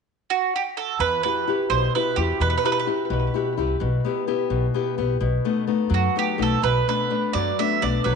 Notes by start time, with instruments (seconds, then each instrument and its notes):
0.30 mandolin F#4
0.56 mandolin G4
0.77 mandolin A4
0.99 upright bass E2, nylon-string guitar E3, mandolin B4
1.23 nylon-string guitar E4 F#4 G4, mandolin B4
1.47 nylon-string guitar E4 F#4 G4
1.70 upright bass B1, nylon-string guitar B2, mandolin C5
1.95 nylon-string guitar E4 F#4 G4, mandolin B4
2.16 upright bass E2, nylon-string guitar E4 F#4 G4, mandolin G4
2.40 upright bass E2, nylon-string guitar B2, mandolin B4
2.50 mandolin B4
2.57 mandolin B4
2.65 nylon-string guitar E4 F#4 G4, mandolin B4
2.72 mandolin B4
2.79 mandolin B4
2.87 nylon-string guitar E4 F#4 G4
3.10 upright bass B1, nylon-string guitar B2
3.34 nylon-string guitar E4 F#4 G4
3.57 upright bass C2, nylon-string guitar E4 F#4 G4
3.80 upright bass B1, nylon-string guitar B2
4.05 nylon-string guitar B3 E4 G4
4.27 nylon-string guitar B3 E4 G4
4.50 upright bass B1, nylon-string guitar B2
4.74 nylon-string guitar B3 E4 G4
4.98 upright bass B1, nylon-string guitar B3 E4 G4
5.20 upright bass B1, nylon-string guitar B2
5.45 nylon-string guitar A3 B3 D#4
5.67 nylon-string guitar A3 B3 D#4
5.90 upright bass F#2, nylon-string guitar F#3
5.94 mandolin F#4
6.16 nylon-string guitar A3 B3 D#4, mandolin G4
6.38 upright bass B1, nylon-string guitar A3 B3 D#4
6.42 mandolin A4
6.62 upright bass B1, nylon-string guitar B2, mandolin B4
6.88 nylon-string guitar A3 B3 D4, mandolin B4
7.10 nylon-string guitar A3 B3 D4
7.33 upright bass F#2, nylon-string guitar F#3, mandolin D5
7.59 nylon-string guitar A3 B3 D4, mandolin E5
7.81 upright bass B1, nylon-string guitar A3 B3 D4, mandolin D5
8.04 upright bass B1, nylon-string guitar F#3, mandolin B4